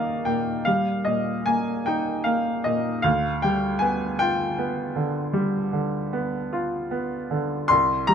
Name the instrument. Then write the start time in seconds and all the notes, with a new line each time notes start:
grand piano
Already playing: D#2 G3 A#3 D#4 D5 D#5 F5
0.25 A#2 G5
0.65 G3 F5
1.05 A#2 D#5
1.46 A#3 G#5
1.86 D#4 G5
2.24 A#3 F5
2.64 A#2 D#5
3.02 D2 F5
3.42 G3 G5
3.79 B3 G#5
4.19 F4 G5
4.58 B3
4.96 D3
5.33 G3
5.73 D3
6.13 B3
6.53 F4
6.91 B3
7.31 D3
7.68 C2 C6
8.07 G3 A#5